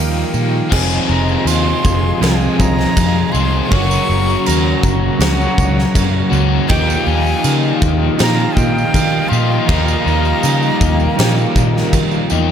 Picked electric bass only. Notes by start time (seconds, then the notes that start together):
Already playing: D#2
0.34 A#2
0.72 F1
1.10 F1
1.45 D#2
1.85 F1
2.22 C2
2.59 C2
2.97 F2
3.35 C2
3.72 F#1
4.09 F#1
4.48 D#2
4.84 F#1
5.19 C#2
5.58 C#2
5.95 F#2
6.32 C#2
6.70 D#2
7.07 D#2
7.45 C#3
7.82 D#2
8.20 A#2
8.57 A#2
8.94 D#3
9.32 A#2
9.69 D#2
10.06 D#2
10.44 C#3
10.81 D#2
11.19 A#2
11.56 A#2
11.93 D#3
12.32 E2